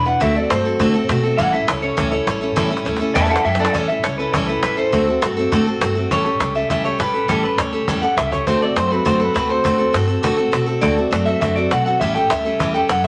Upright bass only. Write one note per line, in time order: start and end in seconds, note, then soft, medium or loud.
0.00 0.14 E1 loud
0.21 0.43 D2 loud
0.50 0.73 G2 loud
0.80 1.02 A2 loud
1.09 1.32 B2 loud
1.38 1.61 A1 loud
1.68 1.91 C#2 loud
1.97 2.20 C#2 loud
2.27 2.49 A1 loud
2.56 2.79 A1 loud
2.86 3.08 D2 loud
3.15 3.38 E2 loud
3.45 3.67 F#2 medium
3.75 3.97 A1 loud
4.04 4.27 C#2 medium
4.33 4.56 C#2 loud
4.63 4.86 A1 loud
4.93 5.15 D2 loud
5.22 5.45 G2 medium
5.52 5.74 A2 loud
5.81 6.04 G1 medium
6.11 6.34 A1 loud
6.40 6.63 C#2 loud
6.70 6.92 C#2 medium
6.99 7.22 A1 loud
7.29 7.51 A1 loud
7.58 7.81 D2 loud
7.88 8.10 E2 loud
8.17 8.40 C#2 loud
8.47 8.69 D2 loud
8.76 8.99 F#2 medium
9.06 9.28 F#2 medium
9.35 9.58 D2 medium
9.65 9.87 D2 loud
9.94 10.16 G2 loud
10.24 10.46 A2 loud
10.52 10.75 B2 loud
10.83 11.05 D2 loud
11.12 11.35 F#2 medium
11.42 11.64 F#2 medium
11.71 11.94 B1 loud
12.01 12.23 A1 loud
12.30 12.53 D2 medium
12.60 12.82 E2 loud
12.89 13.07 F#2 loud